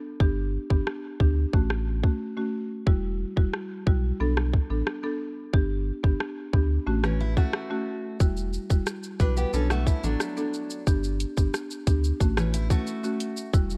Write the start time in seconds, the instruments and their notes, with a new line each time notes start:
0.20 sub bass G1, marimba B3 D4 G4, kick
0.70 sub bass G1, marimba B3 D4 G4, kick
0.87 cross-stick
1.20 sub bass D2, marimba B3 D4 G4, kick
1.53 sub bass A1, marimba A3 C#4 F#4, kick
1.70 cross-stick
2.03 marimba A3 C#4 F#4, kick
2.37 marimba A3 C#4 F#4
2.87 sub bass E1, marimba G3 E4 F#4, kick
3.37 sub bass E1, marimba G3 E4 F#4, kick
3.54 cross-stick
3.87 sub bass B1, marimba G3 E4 F#4, kick
4.20 sub bass B1, marimba B3 D4 A4
4.37 cross-stick
4.53 kick
4.70 sub bass A1, marimba B3 D4 A4
4.87 cross-stick
5.03 marimba B3 D4 A4
5.53 sub bass G1, marimba B3 D4 G4, kick
6.03 sub bass G1, marimba B3 D4 G4, kick
6.20 cross-stick
6.53 sub bass D2, marimba B3 D4 G4, kick
6.87 sub bass A1, marimba A3 C#4 F#4
7.04 steel-string acoustic guitar E3 C#4, cross-stick
7.20 steel-string acoustic guitar E4
7.37 marimba A3 C#4 F#4, steel-string acoustic guitar A3 F#4, kick
7.53 cross-stick
7.70 marimba A3 C#4 F#4
8.20 sub bass E1, marimba G3 E4 F#4, kick, shaker
8.37 shaker
8.53 shaker
8.70 sub bass E1, marimba G3 E4 F#4, kick, shaker
8.87 cross-stick, shaker
9.04 shaker
9.20 sub bass B1, marimba G3 E4 F#4, steel-string acoustic guitar D4 B4, kick, shaker
9.37 steel-string acoustic guitar B3 G4, shaker
9.54 sub bass B1, marimba B3 D4 A4, steel-string acoustic guitar C#4 A4, shaker
9.70 steel-string acoustic guitar A3 F#4, cross-stick, shaker
9.87 steel-string acoustic guitar E4, kick, shaker
10.04 sub bass A1, steel-string acoustic guitar F#3 D4, marimba B3 D4 A4, shaker
10.20 cross-stick, shaker
10.37 marimba B3 D4 A4, shaker
10.54 shaker
10.70 shaker
10.87 sub bass G1, marimba B3 D4 G4, kick, shaker
11.04 shaker
11.20 closed hi-hat, shaker
11.37 sub bass G1, marimba B3 D4 G4, kick, shaker
11.54 cross-stick, shaker
11.70 shaker
11.87 sub bass D2, marimba B3 D4 G4, kick, closed hi-hat, shaker
12.04 shaker
12.20 sub bass A1, marimba A3 C#4 F#4, kick, shaker
12.37 steel-string acoustic guitar E3 C#4, cross-stick, shaker
12.54 steel-string acoustic guitar E4, closed hi-hat, shaker
12.70 marimba A3 C#4 F#4, steel-string acoustic guitar A3 F#4, kick, shaker
12.87 shaker
13.04 marimba A3 C#4 F#4, shaker
13.20 closed hi-hat, shaker
13.37 shaker
13.54 sub bass E1, marimba G3 E4 F#4, kick, riser, shaker
13.70 shaker